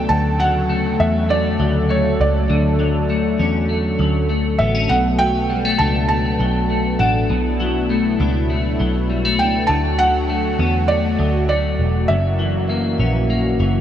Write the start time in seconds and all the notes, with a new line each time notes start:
Already playing: F#3 A3 D4 A4 G5
0.09 D2 C#3 A5
0.40 F#3 F#5
0.69 A3
1.00 E2 E5
1.29 A3 D5
1.60 D2 F#3
1.89 A3 C#5
2.20 C#2 D5
2.50 D2 D3
2.80 F#3
3.10 A3
3.39 E2 C#4
3.69 A3
3.99 D2 F#3
4.29 A3
4.59 A1 B3 E5
4.75 C#4
4.89 B1 B2 B3 F#5
5.19 F#3 G5
5.50 G3
5.65 A3
5.78 C#2 D4 A5
6.09 A3 A5
6.40 B1 F#3
6.70 A3
6.99 A1 D4 F#5
7.29 B1 B2 E4
7.60 F#3
7.90 A3
8.20 C#2 D4
8.50 A3
8.80 B1 F#3
9.10 G3
9.25 A3
9.39 C#2 D4 G5
9.67 D2 D3 F#3 A3 F#4 A5
9.99 F#3 F#5
10.29 A3
10.59 E2 B3
10.88 A3 D5
11.19 D2 F#3
11.49 A3 D5
11.79 E1
12.08 F#1 F#2 E3 F#3 A#3 F#4 E5
12.39 E3
12.69 A#3
12.99 A#1 C#4
13.30 A#3
13.60 F#1 E3